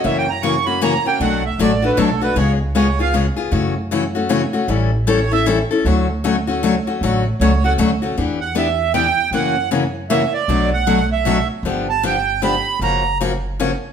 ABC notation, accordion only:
X:1
M:3/4
L:1/8
Q:"Swing" 1/4=155
K:F#phr
V:1 name="Accordion"
(3e g ^a c' b a g | f e d B A B | c z c ^e z2 | z6 |
z2 c e z2 | z6 | z2 c f z2 | z f e2 g2 |
f2 z2 e d- | d f2 e2 z | z a g2 b2 | ^a2 z4 |]